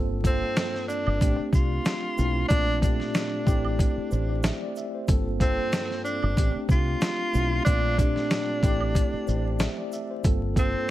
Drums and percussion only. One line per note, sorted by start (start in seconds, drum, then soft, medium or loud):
0.24 kick medium
0.24 closed hi-hat medium
0.24 shaker medium
0.56 snare loud
0.56 closed hi-hat medium
0.56 shaker medium
0.74 snare soft
0.89 shaker soft
0.89 shaker medium
1.07 high woodblock medium
1.21 kick loud
1.21 closed hi-hat loud
1.21 shaker medium
1.53 kick loud
1.53 shaker medium
1.85 snare loud
1.85 closed hi-hat medium
1.85 shaker medium
2.18 shaker medium
2.50 kick loud
2.50 closed hi-hat medium
2.50 shaker medium
2.82 kick medium
2.82 closed hi-hat medium
2.82 shaker medium
3.00 snare soft
3.15 snare loud
3.15 closed hi-hat medium
3.15 shaker medium
3.47 kick medium
3.47 shaker medium
3.65 high woodblock medium
3.79 kick loud
3.79 closed hi-hat medium
3.79 shaker medium
4.11 shaker medium
4.43 snare loud
4.43 closed hi-hat medium
4.43 shaker medium
4.76 shaker medium
5.08 kick loud
5.08 closed hi-hat medium
5.08 shaker medium
5.40 kick medium
5.40 closed hi-hat medium
5.40 shaker medium
5.73 snare loud
5.73 closed hi-hat medium
5.73 shaker medium
5.90 snare soft
6.05 shaker medium
6.22 high woodblock medium
6.37 kick medium
6.37 closed hi-hat medium
6.37 shaker medium
6.69 kick loud
6.69 shaker medium
7.01 snare loud
7.01 closed hi-hat medium
7.01 shaker medium
7.34 shaker medium
7.66 kick loud
7.66 closed hi-hat medium
7.66 shaker medium
7.98 kick medium
7.98 closed hi-hat medium
7.98 shaker medium
8.16 snare soft
8.31 snare loud
8.31 snare medium
8.31 closed hi-hat medium
8.31 shaker medium
8.63 kick medium
8.63 closed hi-hat medium
8.63 shaker soft
8.63 shaker medium
8.81 high woodblock medium
8.95 kick loud
8.95 closed hi-hat medium
8.95 shaker medium
9.27 shaker medium
9.59 snare loud
9.59 closed hi-hat medium
9.59 shaker medium
9.92 shaker medium
10.24 kick loud
10.24 closed hi-hat medium
10.24 shaker medium
10.56 kick medium
10.56 closed hi-hat medium
10.56 shaker medium